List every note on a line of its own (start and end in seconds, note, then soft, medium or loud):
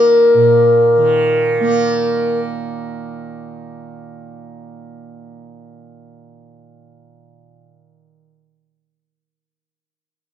0.00 0.34 A#2 medium
0.00 0.98 D#3 medium
0.00 1.60 A#3 medium
0.00 2.39 A#4 medium
0.34 7.49 A#2 medium
0.98 8.13 D#3 medium
1.60 7.50 A#3 medium